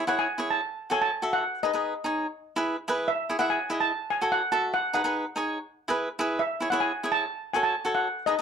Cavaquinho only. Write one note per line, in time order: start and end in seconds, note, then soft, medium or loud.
0.07 0.26 E4 medium
0.07 0.27 G#4 medium
0.07 0.27 C#5 medium
0.38 0.59 E4 medium
0.38 0.60 G#4 medium
0.38 0.60 C#5 medium
0.90 1.09 F#4 medium
0.90 1.10 A4 medium
0.90 1.10 C#5 medium
1.22 1.43 F#4 medium
1.22 1.43 A4 medium
1.22 1.43 E5 medium
1.63 1.70 D#4 medium
1.63 1.70 G#4 medium
1.63 1.70 B4 medium
1.73 1.92 D#4 medium
1.73 1.93 G#4 medium
1.73 1.93 B4 medium
2.04 2.25 D#4 medium
2.04 2.26 G#4 medium
2.04 2.26 C#5 medium
2.56 2.75 E4 medium
2.56 2.76 G#4 medium
2.56 2.76 B4 medium
2.88 3.09 E4 medium
2.88 3.09 G#4 medium
2.88 3.09 B4 medium
3.29 3.36 E4 medium
3.29 3.36 G#4 medium
3.29 3.36 C#5 medium
3.39 3.58 E4 medium
3.39 3.58 G#4 medium
3.39 3.59 E5 medium
3.70 3.91 E4 medium
3.70 3.91 G#4 medium
3.70 3.92 D#5 medium
4.22 4.41 F#4 medium
4.22 4.41 A4 medium
4.22 4.42 C#5 medium
4.52 4.74 F#4 medium
4.52 4.74 A4 medium
4.52 4.74 E5 medium
4.94 5.01 D#4 medium
4.94 5.01 G#4 medium
4.94 5.02 B4 medium
5.04 5.24 D#4 medium
5.04 5.24 G#4 medium
5.04 5.24 B4 medium
5.36 5.57 D#4 medium
5.36 5.58 G#4 medium
5.36 5.58 C#5 medium
5.88 6.07 E4 medium
5.88 6.08 G#4 medium
5.88 6.08 B4 medium
6.19 6.40 E4 medium
6.19 6.41 G#4 medium
6.19 6.41 B4 medium
6.60 6.67 E4 medium
6.60 6.68 G#4 medium
6.60 6.68 C#5 medium
6.72 6.91 E4 medium
6.72 6.91 G#4 medium
6.72 6.92 C#5 medium
7.03 7.24 E4 medium
7.03 7.24 G#4 medium
7.03 7.25 C#5 medium
7.54 7.74 F#4 medium
7.54 7.74 A4 medium
7.54 7.74 C#5 medium
7.85 8.07 F#4 medium
7.85 8.07 A4 medium
7.85 8.07 C#5 medium
8.27 8.34 D#4 medium
8.27 8.35 G#4 medium
8.27 8.35 B4 medium
8.39 8.42 D#4 medium